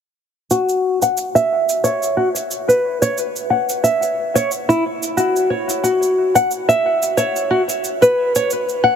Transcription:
0.51 nylon-string guitar F#4, cabasa
0.69 cabasa
1.02 nylon-string guitar F#5, cabasa
1.17 cabasa
1.35 nylon-string guitar E5, cabasa
1.69 cabasa
1.84 nylon-string guitar C#5, cabasa
2.03 cabasa
2.17 nylon-string guitar F#4
2.36 cabasa
2.51 cabasa
2.68 nylon-string guitar B4, cabasa
3.02 nylon-string guitar C#5, cabasa
3.18 cabasa
3.36 cabasa
3.50 nylon-string guitar F#5
3.69 cabasa
3.84 nylon-string guitar E5, cabasa
4.03 cabasa
4.35 nylon-string guitar C#5, cabasa
4.51 cabasa
4.69 nylon-string guitar E4, cabasa
5.03 cabasa
5.17 nylon-string guitar F#4, cabasa
5.36 cabasa
5.50 nylon-string guitar C#5
5.69 cabasa
5.83 nylon-string guitar F#4, cabasa
6.03 cabasa
6.35 nylon-string guitar F#5, cabasa
6.51 cabasa
6.69 nylon-string guitar E5, cabasa
7.03 cabasa
7.17 nylon-string guitar C#5, cabasa
7.36 cabasa
7.51 nylon-string guitar F#4
7.69 cabasa
7.84 cabasa
8.02 nylon-string guitar B4, cabasa
8.35 nylon-string guitar C#5, cabasa
8.50 cabasa
8.69 cabasa
8.84 nylon-string guitar F#5

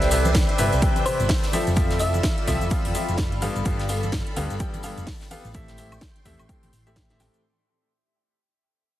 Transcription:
Already playing: fingered electric bass C2, ambient pad A4 D5 G5, string machine B4 C5 E5
0.02 snare, closed hi-hat, tambourine
0.11 grand piano C3 C4 G4 B4 E5, open hi-hat, tambourine, shaker
0.25 closed hi-hat, tambourine, high conga, shaker
0.35 kick, snare, closed hi-hat, tambourine, shaker
0.49 closed hi-hat, tambourine
0.56 fingered electric bass G1, grand piano C3 C4 G4 B4 E5, ambient pad B5, open hi-hat, tambourine, shaker
0.72 fingered electric bass C2, closed hi-hat, tambourine, shaker
0.82 grand piano C3 C4 G4 B4 G5, kick, closed hi-hat, tambourine, shaker
0.96 closed hi-hat, tambourine, high conga
1.06 grand piano C3 C4 G4 B4 E5, synth pluck C5, open hi-hat, tambourine, shaker
1.20 fingered electric bass G1, closed hi-hat, tambourine, shaker
1.29 kick, snare, closed hi-hat, open hi-hat, tambourine, shaker
1.43 snare, closed hi-hat, tambourine
1.52 grand piano F3 C4 F4 A4 E5, string machine F4 A4 E6, open hi-hat, tambourine, high conga, shaker
1.67 fingered electric bass F1, closed hi-hat, tambourine, shaker
1.76 grand piano F3 C4 F4 A4 E5, kick, closed hi-hat, tambourine, shaker
1.90 snare, closed hi-hat, tambourine
1.99 grand piano F3 C4 F4 A4 E5, synth pluck E5, open hi-hat, tambourine, shaker
2.13 closed hi-hat, tambourine, high conga, shaker
2.23 kick, snare, closed hi-hat, tambourine, shaker
2.38 closed hi-hat, tambourine
2.47 fingered electric bass C2, grand piano F3 C4 F4 A4 E5, kick, snare, open hi-hat, tambourine, high conga, shaker
2.61 fingered electric bass F1, closed hi-hat, tambourine, shaker
2.70 grand piano F3 C4 F4 A4 F5, kick, closed hi-hat, tambourine, shaker
2.85 fingered electric bass F1, closed hi-hat, open hi-hat, tambourine, high conga
2.94 grand piano F3 C4 F4 A4 E5, open hi-hat, tambourine, shaker
3.08 fingered electric bass F1, closed hi-hat, tambourine, shaker
3.18 kick, snare, closed hi-hat, tambourine, shaker
3.32 fingered electric bass G1, closed hi-hat, tambourine
3.41 grand piano G2 B3 G4 A4 F5, string machine B5, open hi-hat, tambourine, high conga, shaker
3.56 fingered electric bass G1, closed hi-hat, tambourine, shaker
3.65 fingered electric bass G1, grand piano G2 B3 G4 A4 F5, kick, closed hi-hat, tambourine, shaker
3.79 snare, closed hi-hat, tambourine
3.88 grand piano G2 B3 G4 A4 F5, open hi-hat, tambourine, shaker
4.03 closed hi-hat, tambourine, high conga, shaker
4.12 kick, snare, closed hi-hat, tambourine, shaker
4.26 closed hi-hat, tambourine
4.36 fingered electric bass D2, grand piano G2 B3 G4 A4 F5, open hi-hat, tambourine, shaker
4.50 fingered electric bass G1, closed hi-hat, tambourine, shaker
4.60 grand piano G2 B3 G4 A4 G5, kick, closed hi-hat, tambourine, shaker
4.74 closed hi-hat, tambourine, high conga
4.83 grand piano G2 B3 G4 A4 F5, open hi-hat, tambourine, shaker
4.98 fingered electric bass F1, closed hi-hat, tambourine, shaker
5.07 kick, snare, closed hi-hat, open hi-hat, tambourine, shaker
5.21 snare, closed hi-hat, tambourine
5.31 grand piano B3 G4 A4 F5, open hi-hat, tambourine, high conga, shaker
5.45 fingered electric bass A1, closed hi-hat, tambourine, shaker
5.54 grand piano A2 C4 G4 A4 E5, string machine G5 C6, kick, closed hi-hat, tambourine, shaker
5.68 snare, closed hi-hat, tambourine
5.77 grand piano A2 C4 G4 A4 E5, open hi-hat, tambourine, shaker
5.92 closed hi-hat, tambourine, high conga, high woodblock, shaker
6.01 kick, snare, closed hi-hat, tambourine, shaker
6.15 closed hi-hat, tambourine
6.21 ambient pad C6
6.25 fingered electric bass E2, grand piano A2 C4 G4 A4 E5, kick, snare, open hi-hat, tambourine, high conga, shaker
6.39 fingered electric bass A1, closed hi-hat, tambourine, high woodblock, shaker
6.49 grand piano A2 C4 G4 A4 G5, kick, closed hi-hat, tambourine, shaker
6.63 fingered electric bass A1, closed hi-hat, open hi-hat, tambourine, high conga
6.73 fingered electric bass A1, open hi-hat, tambourine, shaker
6.87 grand piano A2 C4 G4 A4 E5, closed hi-hat, tambourine, shaker
6.96 kick, snare, closed hi-hat, tambourine, shaker
7.10 grand piano A2 C4 G4 A4 E5, snare, closed hi-hat, tambourine
7.20 grand piano A2 C4 G4 A4 G5, snare, open hi-hat, tambourine, high conga, shaker
7.34 closed hi-hat, tambourine, shaker

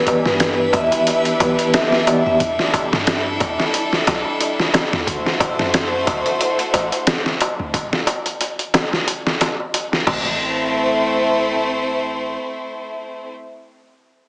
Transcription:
Already playing: tine electric piano E3 B3 G4 D5, violin section G3 D4 E4 B4, synth texture E4 E5, vibraphone B4
0.07 kick, closed hi-hat, darbuka tek
0.26 808-style bass G2, vibraphone B4, snare, darbuka tek
0.40 snare, closed hi-hat, darbuka tek
0.59 darbuka tek
0.73 808-style bass E2, vibraphone E5, kick, closed hi-hat, darbuka tek
0.92 closed hi-hat, darbuka tek
1.07 closed hi-hat, darbuka tek
1.25 closed hi-hat, darbuka tek
1.40 808-style bass B1, tine electric piano E3 B3 G4 B4, closed hi-hat, darbuka tek
1.59 closed hi-hat, darbuka tek
1.74 vibraphone E5, snare, closed hi-hat, darbuka tek
1.92 snare, darbuka tek
2.07 tine electric piano E3 B3 G4 D5, closed hi-hat, darbuka tek
2.26 808-style bass E2, vibraphone E5, darbuka tek
2.40 808-style bass E2, violin section A4, kick, closed hi-hat, darbuka tek
2.59 snare, darbuka tek
2.74 kick, closed hi-hat, darbuka tek
2.93 808-style bass G2, snare, darbuka tek
3.07 snare, closed hi-hat, darbuka tek
3.26 darbuka tek
3.40 808-style bass E2, kick, closed hi-hat, darbuka tek
3.58 snare, darbuka tek
3.74 closed hi-hat, darbuka tek
3.93 snare, darbuka tek
4.07 808-style bass B1, snare, closed hi-hat, darbuka tek
4.25 darbuka tek
4.41 closed hi-hat, darbuka tek
4.59 snare, darbuka tek
4.74 snare, closed hi-hat, darbuka tek
4.91 808-style bass E2, snare, darbuka tek
5.07 808-style bass D2, violin section A3 F#4 C5, kick, closed hi-hat, darbuka tek
5.26 snare, darbuka tek
5.40 kick, closed hi-hat, darbuka tek
5.59 808-style bass F#2, snare, darbuka tek
5.74 snare, closed hi-hat, darbuka tek
5.93 darbuka tek
6.07 808-style bass D2, kick, closed hi-hat, darbuka tek
6.26 closed hi-hat, darbuka tek
6.41 closed hi-hat, darbuka tek
6.59 closed hi-hat, darbuka tek
6.74 808-style bass A1, closed hi-hat, darbuka tek
6.92 closed hi-hat, darbuka tek
7.07 snare, closed hi-hat, darbuka tek
7.26 snare, darbuka tek
7.41 closed hi-hat, darbuka tek
7.59 808-style bass D2, darbuka tek
7.74 kick, closed hi-hat, darbuka tek
7.92 snare, darbuka tek
8.07 closed hi-hat, darbuka tek
8.26 closed hi-hat, darbuka tek
8.41 closed hi-hat, darbuka tek
8.59 closed hi-hat, darbuka tek
8.74 snare, closed hi-hat, darbuka tek
8.91 snare, darbuka tek
9.07 closed hi-hat, darbuka tek
9.26 snare, darbuka tek
9.41 snare, closed hi-hat, darbuka tek
9.60 darbuka tek
9.74 closed hi-hat, darbuka tek
9.92 snare, darbuka tek
10.07 808-style bass A1, violin section A3 C4 E4 C5, kick, crash, darbuka tek
10.26 darbuka tek

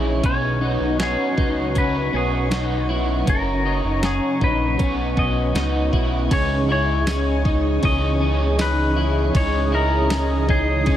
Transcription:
Already playing: analog synth bass A#1, overdriven electric guitar E3 C#4 D#4 G#4, clean electric guitar E4, analog synth pad G#4 C#5 G#5 C#6
0.22 analog synth bass B1, overdriven electric guitar B2 F#3 C#4 D#4 F#4, clean electric guitar C#4 C#5, analog synth pad B4 F#5 C#6, kick, closed hi-hat
0.61 clean electric guitar D#4
0.81 analog synth bass B1
0.98 overdriven electric guitar F#3 C#4 D#4, clean electric guitar C#4, snare, closed hi-hat
1.03 overdriven electric guitar F#4, clean electric guitar G#4
1.37 analog synth bass C#2, clean electric guitar D#4, kick
1.73 overdriven electric guitar F#3 C#4 D#4, clean electric guitar C#4, kick, closed hi-hat
1.78 overdriven electric guitar F#4, clean electric guitar B4
2.13 analog synth bass B1, clean electric guitar C#4 G#4
2.49 overdriven electric guitar F#3 C#4 D#4, clean electric guitar D#4, snare, closed hi-hat
2.54 overdriven electric guitar F#4
2.89 clean electric guitar E4
3.24 analog synth bass F#1, overdriven electric guitar F#2 C#3 F#3, clean electric guitar C#4, analog synth pad A#5, kick, closed hi-hat
3.28 overdriven electric guitar C#4 F#4, clean electric guitar A#4, analog synth pad C#5
3.65 clean electric guitar D#4
3.84 analog synth bass F#1
4.03 clean electric guitar C#4 G#4, snare, closed hi-hat
4.41 analog synth bass A#1, clean electric guitar D#4 B4, kick
4.77 analog synth bass B1, overdriven electric guitar F#3 B3 C#4, clean electric guitar C#4, analog synth pad B4 D#5 F#5, kick, closed hi-hat
4.82 overdriven electric guitar F#4
5.17 analog synth bass B1, clean electric guitar C#4 D#5, kick
5.53 analog synth bass C#2, overdriven electric guitar F#3 B3 C#4, clean electric guitar D#4, snare, closed hi-hat
5.58 overdriven electric guitar F#4
5.93 analog synth bass B1, clean electric guitar E4, kick
6.30 analog synth bass C#2, overdriven electric guitar C#3 E3 C#4 D#4 G#4, clean electric guitar C#4 C#5, analog synth pad G#4 C#5 D#5 C#6, kick, ride
6.68 overdriven electric guitar D#4 G#4, clean electric guitar E4
6.72 overdriven electric guitar C#4, clean electric guitar C#5
7.07 clean electric guitar C#4, snare, ride, tambourine
7.45 clean electric guitar D#4, kick
7.81 analog synth bass C#2, overdriven electric guitar C#3 E3, clean electric guitar C#4, kick, ride
7.85 overdriven electric guitar C#4 D#4 G#4, clean electric guitar D#5
8.20 clean electric guitar C#4
8.59 clean electric guitar D#4 B4, snare, ride, tambourine
8.96 clean electric guitar E4
9.33 analog synth bass C#2, overdriven electric guitar C#3 E3, clean electric guitar C#4 C#5, analog synth pad D#6, kick, ride
9.37 overdriven electric guitar C#4 D#4 G#4
9.72 clean electric guitar E4 A#4
10.10 clean electric guitar C#4, snare, ride, tambourine
10.48 clean electric guitar D#4 G#4, kick
10.84 overdriven electric guitar C#3 E3, clean electric guitar C#4, kick, ride
10.88 overdriven electric guitar C#4 D#4 G#4

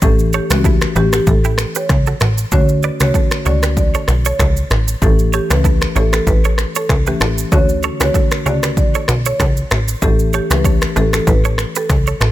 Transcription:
0.02 analog synth bass A1, marimba E3 A3 C#4 G4 A4, kick, shaker
0.19 shaker
0.33 marimba G4, clean electric guitar A4 C#5, shaker
0.50 analog synth bass C#2, marimba E3 A3 C#4 F#4 G4, clean electric guitar G4 B4, finger snap, cross-stick, shaker
0.64 clean electric guitar E4 A4, kick, shaker
0.81 finger snap, cross-stick, shaker
0.96 analog synth bass A1, marimba E3 A3 C#4 G4, clean electric guitar G4 B4, shaker
1.13 clean electric guitar F#4 A4, marimba G4, finger snap, cross-stick, shaker
1.27 analog synth bass A1, marimba A4, kick, shaker
1.44 clean electric guitar E4 G4, shaker
1.58 finger snap, cross-stick, shaker
1.75 clean electric guitar G4 B4, marimba C#5, shaker
1.89 analog synth bass C#2, finger snap, kick, cross-stick, shaker
2.06 clean electric guitar F#4 A4, shaker
2.20 analog synth bass A1, clean electric guitar F#4 A4, finger snap, cross-stick, shaker
2.38 shaker
2.52 analog synth bass D2, marimba D3 A3 C#4 F#4 C#5, kick, shaker
2.69 shaker
2.83 clean electric guitar B4 D5, shaker
3.00 analog synth bass C#2, marimba D3 A3 C#4 F#4 C#5, clean electric guitar G4 B4, finger snap, cross-stick, shaker
3.14 clean electric guitar F#4 A4, kick, shaker
3.31 finger snap, cross-stick, shaker
3.45 analog synth bass C#2, marimba D3 A3 C#4 F#4 D5, clean electric guitar A4 C#5, shaker
3.63 clean electric guitar G4 B4, finger snap, cross-stick, shaker
3.77 marimba D5, kick, shaker
3.94 clean electric guitar A4 C#5, shaker
4.08 analog synth bass B1, finger snap, cross-stick, shaker
4.25 clean electric guitar A4 C#5, marimba C#5, shaker
4.39 analog synth bass C#2, clean electric guitar F#4 A4, finger snap, kick, cross-stick, shaker
4.57 shaker
4.71 analog synth bass A1, finger snap, cross-stick, shaker
4.88 shaker
5.02 analog synth bass A1, marimba E3 A3 C#4 G4 A4, kick, shaker
5.19 shaker
5.33 marimba G4, clean electric guitar A4 C#5, shaker
5.50 analog synth bass C#2, marimba E3 A3 C#4 G4 B4, clean electric guitar G4 B4, finger snap, cross-stick, shaker
5.64 clean electric guitar E4 A4, kick, shaker
5.81 finger snap, cross-stick, shaker
5.95 analog synth bass A1, marimba E3 A3 C#4 G4 A4, clean electric guitar A4 C#5, shaker
6.13 clean electric guitar G4 B4, marimba A4, finger snap, cross-stick, shaker
6.27 analog synth bass A1, marimba B4, kick, shaker
6.44 clean electric guitar A4 C#5, shaker
6.58 finger snap, cross-stick, shaker
6.75 marimba A4, clean electric guitar A4 C#5, shaker
6.89 analog synth bass C#2, finger snap, kick, cross-stick, shaker
7.07 marimba E3 A3 C#4 G4, clean electric guitar G4 B4, shaker
7.21 analog synth bass A1, clean electric guitar F#4 A4, finger snap, cross-stick, shaker
7.38 shaker
7.52 analog synth bass D2, marimba D3 A3 C#4 F#4 C#5, kick, shaker
7.69 shaker
7.83 clean electric guitar A4 C#5, shaker
8.00 analog synth bass C#2, marimba D3 A3 C#4 F#4 C#5, clean electric guitar G4 B4, finger snap, cross-stick, shaker
8.14 clean electric guitar F#4 A4, kick, shaker
8.31 finger snap, cross-stick, shaker
8.46 analog synth bass C#2, marimba D3 A3 C#4 F#4 D5, clean electric guitar A4 C#5, shaker
8.63 clean electric guitar G4 B4, finger snap, cross-stick, shaker
8.77 marimba D5, kick, shaker
8.95 clean electric guitar A4 C#5, shaker
9.08 analog synth bass B1, finger snap, cross-stick, shaker
9.26 clean electric guitar A4 C#5, marimba C#5, shaker
9.40 analog synth bass C#2, clean electric guitar F#4 A4, finger snap, kick, cross-stick, shaker
9.57 shaker
9.71 analog synth bass A1, finger snap, cross-stick, shaker
9.88 shaker
10.02 analog synth bass A1, marimba E3 A3 C#4 G4 A4, kick, shaker
10.19 shaker
10.33 marimba G4, clean electric guitar A4 C#5, shaker
10.51 analog synth bass C#2, marimba E3 A3 C#4 G4 B4, clean electric guitar G4 B4, finger snap, cross-stick, shaker
10.64 clean electric guitar A4 C#5, kick, shaker
10.82 finger snap, cross-stick, shaker
10.96 analog synth bass A1, marimba E3 A3 C#4 G4 A4, clean electric guitar G4 B4, shaker
11.13 clean electric guitar F#4 A4, marimba A4, finger snap, cross-stick, shaker
11.27 analog synth bass A1, marimba B4, kick, shaker
11.45 clean electric guitar A4 C#5, shaker
11.58 finger snap, cross-stick, shaker
11.76 clean electric guitar G4 B4, marimba A4, shaker
11.90 analog synth bass C#2, finger snap, kick, cross-stick, shaker
12.07 clean electric guitar A4 C#5, shaker
12.21 analog synth bass A1, clean electric guitar F#4 A4, finger snap, cross-stick, shaker

